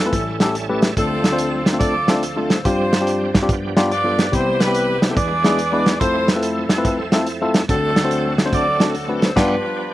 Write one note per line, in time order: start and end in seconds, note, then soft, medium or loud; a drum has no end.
0.00 0.11 F3 medium
0.00 0.11 A3 medium
0.00 0.12 C4 medium
0.00 0.78 C#4 medium
0.00 0.11 E4 medium
0.00 0.78 E4 medium
0.00 0.11 A4 medium
0.00 0.37 A4 medium
0.06 0.13 A3 medium
0.06 0.13 C4 medium
0.06 0.13 E4 medium
0.06 0.13 F4 medium
0.06 0.13 B4 medium
0.13 0.93 A1 medium
0.13 0.93 A2 medium
0.13 0.96 G3 medium
0.13 0.95 A3 medium
0.13 0.20 C4 soft
0.13 0.95 E4 medium
0.13 0.96 A4 medium
0.13 kick loud
0.13 closed hi-hat loud
0.19 0.98 C#4 medium
0.40 0.55 A3 medium
0.40 0.55 C#4 medium
0.40 0.55 E4 medium
0.40 0.55 G4 medium
0.40 0.55 A4 loud
0.40 snare loud
0.40 closed hi-hat medium
0.54 0.94 A5 medium
0.54 closed hi-hat loud
0.69 0.89 A3 medium
0.69 0.89 C#4 medium
0.69 0.89 E4 medium
0.69 0.89 G4 medium
0.69 0.89 B4 medium
0.82 snare loud
0.82 closed hi-hat medium
0.96 2.62 D2 medium
0.96 2.61 D3 medium
0.96 2.61 F3 medium
0.96 2.61 A3 medium
0.96 1.24 A3 medium
0.96 2.62 C4 medium
0.96 1.77 C4 medium
0.96 1.24 C4 medium
0.96 2.61 D4 medium
0.96 1.24 D4 medium
0.96 1.77 F4 medium
0.96 1.24 F4 medium
0.96 1.62 A4 loud
0.96 2.62 A4 medium
0.96 1.24 A4 medium
0.96 kick loud
0.96 closed hi-hat loud
1.24 snare loud
1.24 closed hi-hat medium
1.32 1.61 A3 medium
1.32 1.61 C4 medium
1.32 1.61 D4 medium
1.32 1.61 F4 medium
1.32 1.61 C5 medium
1.38 closed hi-hat loud
1.66 snare loud
1.66 closed hi-hat medium
1.73 1.93 A3 medium
1.73 1.93 C4 medium
1.73 1.93 D4 medium
1.73 1.94 F4 medium
1.73 1.94 A4 medium
1.78 2.60 F4 medium
1.78 2.61 A4 medium
1.78 2.19 D5 loud
1.78 kick loud
1.78 closed hi-hat loud
2.08 2.23 A3 medium
2.08 2.23 C4 medium
2.08 2.23 D4 medium
2.08 2.23 F4 medium
2.08 2.23 A4 medium
2.08 snare loud
2.08 closed hi-hat medium
2.23 closed hi-hat loud
2.37 2.57 A3 medium
2.37 2.57 C4 medium
2.37 2.57 D4 medium
2.37 2.57 F4 medium
2.37 2.57 A4 medium
2.48 2.62 C5 medium
2.48 snare loud
2.48 closed hi-hat medium
2.63 3.45 G2 medium
2.63 3.47 F3 medium
2.63 2.91 G3 medium
2.63 3.47 G3 medium
2.63 2.72 B3 soft
2.63 2.92 C4 medium
2.63 2.92 D4 medium
2.63 3.47 D4 medium
2.63 3.45 F4 medium
2.63 2.91 F4 medium
2.63 2.92 G4 medium
2.63 3.48 G4 medium
2.63 3.44 C5 loud
2.63 kick loud
2.63 closed hi-hat loud
2.71 3.50 C4 medium
2.93 snare loud
2.93 closed hi-hat medium
3.00 3.29 G3 medium
3.00 3.29 C4 medium
3.00 3.29 D4 medium
3.00 3.29 F4 medium
3.00 3.29 G4 medium
3.07 closed hi-hat loud
3.35 kick medium
3.35 snare loud
3.35 closed hi-hat medium
3.42 3.49 G3 medium
3.42 3.49 C4 medium
3.42 3.49 D4 medium
3.42 3.49 F4 medium
3.42 3.49 G4 loud
3.48 4.29 G2 medium
3.48 4.31 F3 medium
3.48 4.31 G3 medium
3.48 4.31 B3 medium
3.48 4.31 D4 medium
3.48 3.56 F4 medium
3.48 kick loud
3.48 closed hi-hat loud
3.54 4.31 G4 medium
3.77 3.90 G3 loud
3.77 3.91 B3 medium
3.77 3.90 D4 loud
3.77 3.91 F4 loud
3.77 3.91 G4 loud
3.77 snare loud
3.77 closed hi-hat medium
3.91 4.30 F4 medium
3.91 4.30 B4 medium
3.91 4.30 D5 loud
3.91 closed hi-hat medium
4.04 4.25 G3 medium
4.04 4.25 B3 medium
4.04 4.25 D4 medium
4.04 4.25 F4 medium
4.04 4.25 A4 medium
4.19 snare loud
4.19 closed hi-hat medium
4.32 5.12 C2 medium
4.32 5.12 C3 medium
4.32 4.40 D#3 medium
4.32 4.59 G3 medium
4.32 5.15 G3 medium
4.32 4.59 B3 medium
4.32 5.15 B3 medium
4.32 4.59 C4 medium
4.32 5.15 C4 medium
4.32 4.59 E4 medium
4.32 4.58 E4 medium
4.32 4.59 G4 medium
4.32 5.15 G4 medium
4.32 4.58 G4 medium
4.32 4.60 C5 loud
4.32 kick loud
4.32 closed hi-hat loud
4.38 5.16 E3 medium
4.59 5.12 E4 medium
4.59 5.12 G4 medium
4.59 5.02 B4 loud
4.59 snare loud
4.59 closed hi-hat medium
4.67 4.96 G3 medium
4.67 4.96 B3 medium
4.67 4.96 C4 medium
4.67 4.96 E4 medium
4.67 4.96 G4 medium
4.75 closed hi-hat loud
5.02 5.17 C5 medium
5.02 snare loud
5.02 closed hi-hat medium
5.09 5.17 G3 medium
5.09 5.17 B3 medium
5.09 5.17 C4 medium
5.09 5.17 E4 medium
5.09 5.17 A4 medium
5.16 5.97 E2 medium
5.16 5.97 E3 medium
5.16 6.00 E3 medium
5.16 5.99 G#3 medium
5.16 5.99 B3 medium
5.16 5.99 D4 medium
5.16 5.97 G#4 medium
5.16 5.99 G#4 medium
5.16 5.96 B4 medium
5.16 5.96 D5 loud
5.16 kick loud
5.16 closed hi-hat loud
5.44 5.59 G#3 medium
5.44 5.59 B3 medium
5.44 5.59 D4 medium
5.44 5.59 E4 medium
5.44 5.59 G#4 loud
5.44 snare loud
5.44 closed hi-hat medium
5.59 closed hi-hat medium
5.72 5.93 G#3 medium
5.72 5.93 B3 medium
5.72 5.93 D4 medium
5.72 5.93 E4 medium
5.72 5.93 B4 medium
5.86 snare loud
5.86 closed hi-hat medium
6.00 7.65 F2 medium
6.00 7.66 F3 medium
6.00 6.27 A3 medium
6.00 7.66 A3 medium
6.00 6.27 C4 medium
6.00 7.66 C4 medium
6.00 6.70 E4 medium
6.00 6.28 E4 medium
6.00 7.66 E4 medium
6.00 6.28 F4 medium
6.00 6.42 A4 medium
6.00 6.28 A4 medium
6.00 7.66 A4 medium
6.00 6.28 C5 loud
6.00 kick loud
6.00 closed hi-hat loud
6.28 6.42 B4 loud
6.28 snare loud
6.28 closed hi-hat medium
6.36 6.64 A3 medium
6.36 6.65 C4 medium
6.36 6.65 E4 medium
6.36 6.65 F4 medium
6.36 6.65 A4 medium
6.43 6.70 A4 medium
6.43 closed hi-hat loud
6.69 7.50 C4 medium
6.69 7.51 E4 medium
6.69 7.10 A4 medium
6.69 snare loud
6.69 closed hi-hat medium
6.77 6.97 A3 medium
6.77 6.98 C4 medium
6.77 6.98 E4 medium
6.77 6.98 F4 medium
6.77 6.98 B4 medium
6.85 kick loud
6.85 closed hi-hat loud
7.12 7.26 A3 medium
7.12 7.26 C4 medium
7.12 7.27 E4 medium
7.12 7.27 F4 medium
7.12 7.27 A4 loud
7.12 snare loud
7.12 closed hi-hat medium
7.27 closed hi-hat medium
7.42 7.62 A3 medium
7.42 7.62 C4 medium
7.42 7.62 E4 medium
7.42 7.62 F4 medium
7.42 7.62 A4 loud
7.54 snare loud
7.54 closed hi-hat medium
7.68 9.33 D2 medium
7.68 9.33 D3 medium
7.68 9.33 F#3 medium
7.68 9.33 A3 medium
7.68 7.96 A3 medium
7.68 9.33 C4 medium
7.68 7.96 C4 medium
7.68 8.49 C4 medium
7.68 9.33 D4 medium
7.68 7.96 D4 medium
7.68 8.49 F#4 medium
7.68 7.96 F#4 medium
7.68 9.33 A4 medium
7.68 8.34 A4 loud
7.68 7.96 A4 medium
7.68 kick loud
7.68 closed hi-hat loud
7.96 snare loud
7.96 closed hi-hat medium
8.04 8.33 A3 medium
8.04 8.33 C4 medium
8.04 8.33 D4 medium
8.04 8.33 F#4 medium
8.04 8.33 C5 medium
8.11 closed hi-hat loud
8.38 snare loud
8.38 closed hi-hat medium
8.45 8.65 A3 medium
8.45 8.65 C4 medium
8.45 8.66 D4 medium
8.45 8.65 F#4 medium
8.45 8.66 C5 medium
8.53 9.33 F#4 medium
8.53 9.33 A4 medium
8.53 8.92 D5 loud
8.53 kick loud
8.53 closed hi-hat loud
8.80 8.94 A3 medium
8.80 8.94 C4 medium
8.80 8.94 D4 medium
8.80 8.95 F#4 medium
8.80 8.94 A4 medium
8.80 snare loud
8.80 closed hi-hat medium
8.95 closed hi-hat medium
9.08 9.29 A3 medium
9.08 9.29 C4 medium
9.08 9.29 D4 medium
9.08 9.29 F#4 medium
9.08 9.29 B4 medium
9.22 9.35 C5 medium
9.22 snare loud
9.22 closed hi-hat medium
9.35 9.55 G2 loud
9.35 9.94 F3 medium
9.35 9.94 G3 medium
9.35 9.55 G3 loud
9.35 9.55 B3 loud
9.35 9.94 B3 medium
9.35 9.94 D4 medium
9.35 9.55 D4 loud
9.35 9.94 F4 medium
9.35 9.55 F4 loud
9.35 9.94 G4 medium
9.35 9.55 G4 loud
9.35 9.94 B4 loud
9.35 kick loud
9.35 snare loud
9.35 crash medium